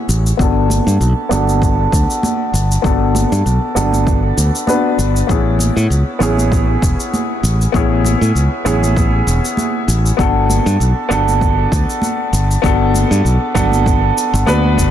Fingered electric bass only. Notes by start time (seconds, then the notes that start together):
0.09 A1
0.39 G1
0.87 G2
1.01 B1
1.31 G1
1.92 D2
2.54 G1
2.84 G1
3.32 G2
3.46 B1
3.76 G1
4.37 D2
4.99 G1
5.29 A1
5.76 A2
5.90 C#2
6.21 A1
6.82 E1
7.43 A1
7.74 A1
8.21 A2
8.35 C#2
8.66 A1
9.27 E1
9.88 A1
10.19 G1
10.66 G2
10.80 B1
11.11 G1
11.72 D2
12.33 G1
12.64 G1
13.11 G2
13.25 B1
13.55 G1
14.33 G1
14.47 D2
14.78 G1